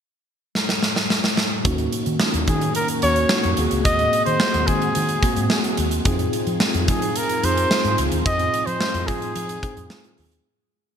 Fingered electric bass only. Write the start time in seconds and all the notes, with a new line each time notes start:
1.65 D#2
2.07 D#3
2.34 D#2
2.48 D#3
3.03 D#2
3.45 F2
3.58 D#2
3.72 C#2
3.85 D#2
4.27 D#3
4.54 D#2
4.68 D#3
4.96 D#3
5.37 G#2
5.78 D#2
6.05 F2
6.47 F3
6.75 F2
6.88 F3
7.43 F2
7.85 G#2
7.98 C#2
8.12 D#2
8.26 F2
8.67 F3
8.94 F2
9.08 F3
9.36 F3
9.77 F2
10.19 D#2